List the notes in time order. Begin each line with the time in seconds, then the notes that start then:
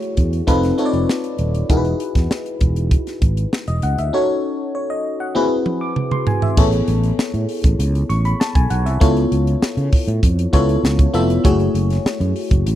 Already playing: A3 E4 F#4 G#4 C#5
0.02 closed hi-hat
0.17 E2, kick, closed hi-hat
0.33 closed hi-hat
0.47 F1 C4 D#4 F4 A4 B4, kick, closed hi-hat
0.63 snare, closed hi-hat
0.78 C4 D#4 F4 A4 C#5, closed hi-hat
0.86 D5
0.93 F1, closed hi-hat
1.09 snare
1.24 closed hi-hat
1.38 D#1, closed hi-hat
1.54 closed hi-hat
1.69 E1 D#4 E4 F#4 G#4 A#4, kick, closed hi-hat
1.77 B4
1.85 closed hi-hat
2.00 closed hi-hat
2.15 E2, kick, snare, closed hi-hat
2.31 snare
2.46 closed hi-hat
2.61 E1, kick, closed hi-hat
2.76 closed hi-hat
2.91 kick, closed hi-hat
3.07 snare, closed hi-hat
3.22 G#1, kick, closed hi-hat
3.37 closed hi-hat
3.53 snare
3.67 E1 D#5, closed hi-hat
3.82 C#2 F#5, closed hi-hat
3.98 D2 E5, closed hi-hat
4.13 C#4 D#4 F#4 A4 C#5
4.75 C#5
4.90 D#5
5.20 F#5
5.35 C4 E4 F#4 G#4 B4, high tom
5.66 mid tom
5.81 D6
5.96 mid tom
6.11 C6, mid tom
6.27 G#5, floor tom
6.42 E5, floor tom
6.57 A1 B3 E4 G#4 A4 C#5, kick, crash
6.72 closed hi-hat
6.88 A1, closed hi-hat
7.03 closed hi-hat
7.18 muted fretless electric bass stroke, snare
7.34 A2, closed hi-hat
7.49 open hi-hat
7.64 A1, kick, closed hi-hat
7.79 C#2, closed hi-hat
7.95 closed hi-hat
8.09 A1 C#6, closed hi-hat
8.25 B5, closed hi-hat
8.40 A5, snare
8.55 B1 G#5, kick, closed hi-hat
8.70 B1 F#5, closed hi-hat
8.86 C2 E5, closed hi-hat
9.00 C#2 B3 E4 F4 A4 C#5, kick, closed hi-hat
9.17 closed hi-hat
9.32 C#2, closed hi-hat
9.47 closed hi-hat
9.62 muted fretless electric bass stroke, snare
9.77 C#3, closed hi-hat
9.92 kick, open hi-hat
10.08 A2, closed hi-hat
10.23 F2, kick, closed hi-hat
10.39 closed hi-hat
10.53 C#2 B3 E4 F4 A4 C#5, kick, closed hi-hat
10.69 closed hi-hat
10.84 C#2, snare
10.99 kick, closed hi-hat
11.14 F1 B3 E4 F4 A4 E5, closed hi-hat
11.30 closed hi-hat
11.44 F#1 A3 E4 F#4 G#4 C#5, kick, closed hi-hat
11.60 closed hi-hat
11.74 F#1, closed hi-hat
11.90 snare, closed hi-hat
12.05 muted fretless electric bass stroke, snare
12.20 F#2, closed hi-hat
12.36 open hi-hat
12.51 F#1, kick, closed hi-hat
12.66 A1, closed hi-hat